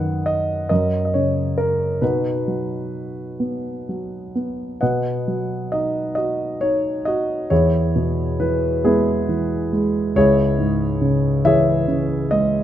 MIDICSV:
0, 0, Header, 1, 2, 480
1, 0, Start_track
1, 0, Key_signature, 5, "major"
1, 0, Tempo, 870827
1, 1111, Time_signature, 6, 3, 24, 8
1, 1111, Tempo, 906344
1, 1591, Tempo, 946372
1, 2551, Tempo, 898204
1, 4471, Tempo, 872093
1, 6798, End_track
2, 0, Start_track
2, 0, Title_t, "Grand piano"
2, 0, Program_c, 0, 0
2, 0, Control_c, 0, 64, 127
2, 0, Note_on_c, 0, 42, 48
2, 0, Note_on_c, 0, 51, 38
2, 0, Note_on_c, 0, 71, 53
2, 0, Note_on_c, 0, 75, 55
2, 0, Note_on_c, 0, 78, 74
2, 134, Note_off_c, 0, 75, 0
2, 143, Note_on_c, 0, 75, 71
2, 159, Note_off_c, 0, 78, 0
2, 364, Note_off_c, 0, 71, 0
2, 370, Note_off_c, 0, 42, 0
2, 374, Note_off_c, 0, 75, 0
2, 377, Note_off_c, 0, 51, 0
2, 382, Note_on_c, 0, 75, 71
2, 384, Note_on_c, 0, 70, 50
2, 391, Note_on_c, 0, 42, 52
2, 395, Control_c, 0, 64, 0
2, 482, Control_c, 0, 64, 127
2, 571, Note_off_c, 0, 75, 0
2, 579, Note_on_c, 0, 75, 48
2, 622, Note_off_c, 0, 75, 0
2, 628, Note_on_c, 0, 73, 60
2, 634, Note_on_c, 0, 49, 40
2, 860, Note_off_c, 0, 70, 0
2, 869, Note_on_c, 0, 70, 58
2, 876, Note_off_c, 0, 73, 0
2, 1091, Note_off_c, 0, 42, 0
2, 1100, Note_off_c, 0, 49, 0
2, 1111, Note_on_c, 0, 71, 57
2, 1112, Note_on_c, 0, 47, 46
2, 1118, Note_off_c, 0, 70, 0
2, 1118, Control_c, 0, 64, 0
2, 1119, Note_on_c, 0, 66, 42
2, 1120, Note_on_c, 0, 63, 39
2, 1219, Control_c, 0, 64, 127
2, 1355, Note_on_c, 0, 54, 35
2, 1832, Note_on_c, 0, 59, 35
2, 2074, Note_off_c, 0, 54, 0
2, 2081, Note_on_c, 0, 54, 33
2, 2294, Note_off_c, 0, 71, 0
2, 2298, Note_off_c, 0, 66, 0
2, 2299, Note_off_c, 0, 63, 0
2, 2310, Note_off_c, 0, 59, 0
2, 2317, Note_on_c, 0, 59, 35
2, 2530, Note_off_c, 0, 47, 0
2, 2539, Note_off_c, 0, 54, 0
2, 2545, Note_off_c, 0, 59, 0
2, 2547, Note_on_c, 0, 78, 61
2, 2550, Note_on_c, 0, 71, 46
2, 2550, Note_on_c, 0, 75, 45
2, 2556, Note_on_c, 0, 47, 44
2, 2557, Control_c, 0, 64, 0
2, 2651, Control_c, 0, 64, 127
2, 2797, Note_on_c, 0, 54, 37
2, 3026, Note_off_c, 0, 75, 0
2, 3034, Note_on_c, 0, 75, 60
2, 3042, Note_on_c, 0, 63, 39
2, 3050, Note_off_c, 0, 78, 0
2, 3255, Note_off_c, 0, 71, 0
2, 3257, Note_off_c, 0, 75, 0
2, 3265, Note_on_c, 0, 75, 64
2, 3278, Note_on_c, 0, 66, 42
2, 3510, Note_off_c, 0, 63, 0
2, 3510, Note_on_c, 0, 73, 63
2, 3516, Note_off_c, 0, 75, 0
2, 3518, Note_on_c, 0, 63, 42
2, 3733, Note_off_c, 0, 54, 0
2, 3748, Note_on_c, 0, 75, 66
2, 3751, Note_off_c, 0, 66, 0
2, 3758, Note_off_c, 0, 73, 0
2, 3759, Note_on_c, 0, 66, 47
2, 3974, Note_off_c, 0, 47, 0
2, 3979, Note_off_c, 0, 63, 0
2, 3987, Note_on_c, 0, 73, 72
2, 3988, Note_off_c, 0, 66, 0
2, 3991, Note_on_c, 0, 40, 53
2, 3994, Note_on_c, 0, 64, 50
2, 3995, Note_on_c, 0, 68, 49
2, 3996, Note_off_c, 0, 75, 0
2, 4000, Control_c, 0, 64, 0
2, 4079, Control_c, 0, 64, 127
2, 4229, Note_on_c, 0, 47, 43
2, 4466, Note_on_c, 0, 52, 50
2, 4466, Note_on_c, 0, 71, 66
2, 4482, Note_off_c, 0, 73, 0
2, 4695, Note_off_c, 0, 64, 0
2, 4695, Note_off_c, 0, 68, 0
2, 4710, Note_on_c, 0, 56, 51
2, 4712, Note_on_c, 0, 68, 74
2, 4719, Note_on_c, 0, 64, 53
2, 4720, Note_on_c, 0, 59, 50
2, 4721, Note_off_c, 0, 71, 0
2, 4948, Note_off_c, 0, 52, 0
2, 4956, Note_on_c, 0, 52, 50
2, 5177, Note_off_c, 0, 47, 0
2, 5189, Note_off_c, 0, 56, 0
2, 5197, Note_on_c, 0, 56, 53
2, 5236, Note_off_c, 0, 68, 0
2, 5414, Note_off_c, 0, 40, 0
2, 5416, Note_off_c, 0, 59, 0
2, 5416, Note_off_c, 0, 64, 0
2, 5420, Note_off_c, 0, 52, 0
2, 5428, Note_off_c, 0, 56, 0
2, 5433, Note_on_c, 0, 37, 64
2, 5437, Note_on_c, 0, 73, 84
2, 5443, Control_c, 0, 64, 0
2, 5443, Note_on_c, 0, 64, 58
2, 5445, Note_on_c, 0, 68, 61
2, 5545, Control_c, 0, 64, 127
2, 5670, Note_on_c, 0, 44, 49
2, 5905, Note_on_c, 0, 49, 53
2, 6129, Note_off_c, 0, 64, 0
2, 6129, Note_off_c, 0, 68, 0
2, 6143, Note_on_c, 0, 52, 56
2, 6145, Note_on_c, 0, 76, 84
2, 6146, Note_off_c, 0, 73, 0
2, 6154, Note_on_c, 0, 68, 65
2, 6155, Note_on_c, 0, 73, 61
2, 6373, Note_off_c, 0, 49, 0
2, 6381, Note_on_c, 0, 49, 49
2, 6605, Note_off_c, 0, 44, 0
2, 6605, Note_off_c, 0, 76, 0
2, 6618, Note_on_c, 0, 75, 76
2, 6625, Note_on_c, 0, 56, 51
2, 6798, Note_off_c, 0, 37, 0
2, 6798, Note_off_c, 0, 49, 0
2, 6798, Note_off_c, 0, 52, 0
2, 6798, Note_off_c, 0, 56, 0
2, 6798, Note_off_c, 0, 68, 0
2, 6798, Note_off_c, 0, 73, 0
2, 6798, Note_off_c, 0, 75, 0
2, 6798, End_track
0, 0, End_of_file